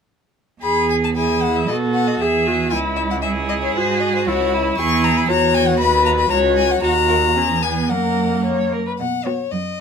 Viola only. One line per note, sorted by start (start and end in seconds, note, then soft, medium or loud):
0.63 1.13 G#4 soft
1.16 1.68 G#4 soft
1.70 2.23 A4 soft
2.21 2.48 G#4 soft
2.47 2.74 F#4 soft
2.73 3.24 E4 soft
3.25 3.78 E4 soft
3.76 4.29 F#4 medium
4.27 4.78 E4 soft
4.79 5.31 E4 medium
5.29 6.31 F#4 medium
6.32 6.82 F#4 soft
6.83 7.38 F#4 medium
7.37 7.62 C#4 soft
7.63 7.91 B3 soft
7.90 8.79 A#3 soft
9.26 9.46 B3 soft